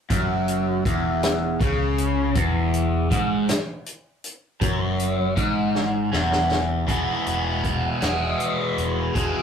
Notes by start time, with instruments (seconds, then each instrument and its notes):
0.10 picked electric bass F#1, overdriven electric guitar F#2, kick, closed hi-hat
0.48 closed hi-hat
0.85 picked electric bass E1, overdriven electric guitar E2, kick, closed hi-hat
1.23 snare, closed hi-hat
1.60 picked electric bass C#2, overdriven electric guitar C#3, kick, closed hi-hat
1.98 closed hi-hat
2.35 picked electric bass E1, overdriven electric guitar E2, kick, closed hi-hat
2.74 closed hi-hat
3.11 picked electric bass G#1, overdriven electric guitar G#2, kick, closed hi-hat
3.49 snare, closed hi-hat
3.86 closed hi-hat
4.24 closed hi-hat
4.61 picked electric bass F#1, overdriven electric guitar F#2, kick, closed hi-hat
5.00 closed hi-hat
5.36 picked electric bass G#1, overdriven electric guitar G#2, kick, closed hi-hat
5.75 snare
6.13 picked electric bass E1, overdriven electric guitar E2, snare
6.32 snare
6.51 snare
6.87 picked electric bass E1, overdriven electric guitar E2 B2 E3 G#3 B3, kick, closed hi-hat
6.91 overdriven electric guitar G#4
7.26 picked electric bass E1, closed hi-hat
7.64 kick, closed hi-hat
8.01 picked electric bass E1, overdriven electric guitar B2 E3 G#3 B3 G#4, snare, closed hi-hat
8.05 overdriven electric guitar E2
8.40 closed hi-hat
8.77 picked electric bass E1, closed hi-hat
9.13 picked electric bass E1, overdriven electric guitar E2 B2 E3 G#3 B3 G#4, kick, closed hi-hat